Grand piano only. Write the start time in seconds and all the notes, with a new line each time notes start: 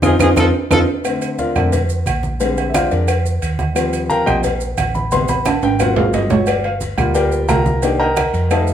0.03 C4 D#4 F4
0.20 C4 D#4 F4
0.36 C4 D#4 F4
0.71 C4 D#4 F4
1.04 D3 A3 C4
1.39 F4 A#4 D5 F5
1.55 D3 A3 C4 D4 A4 A#4 D5
2.40 D3 G3 G#3 C4
2.69 E5
2.74 F4 C5 D5 F5
2.91 D4 G#4 A#4 D5
3.75 F3 G3 C4
4.10 A#4 F5 G5 A#5
4.26 F3 G3 C4 G4 C5 D#5 G5
4.95 B5
5.12 C3 G3 B3 C6
5.29 B5
5.46 A5
5.64 G5
5.79 F#3 A#3 C4 F4 F#5
5.97 F5
6.14 D#5
6.30 C#5
6.48 D5
6.65 F5
6.97 G3 A#3 F4
7.15 G4 A#4 D5 G5
7.49 A#4 F5 G5 A#5
7.82 D#3 A#3 D4 G4 D5 D#5 G5
8.00 A#4 D#5 G5 A#5
8.50 G3 A3 D#4 A4 D#5 F5 A5